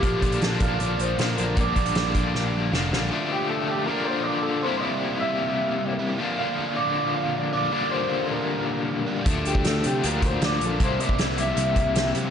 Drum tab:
HH |x-xxx-x-x-x-x-x-|x-xxx-x---------|----------------|----------------|
SD |----o-------o---|----o---o---o-o-|----------------|----------------|
BD |o-o---o---------|o-o---o---------|----------------|----------------|

HH |----------------|----------------|x-x-x-x-x-x-x-x-|x-x-x-x-x-x-x-x-|
SD |----------------|----------------|----o-------o---|----o-------o---|
BD |----------------|----------------|o--o------o-----|o--o------o-----|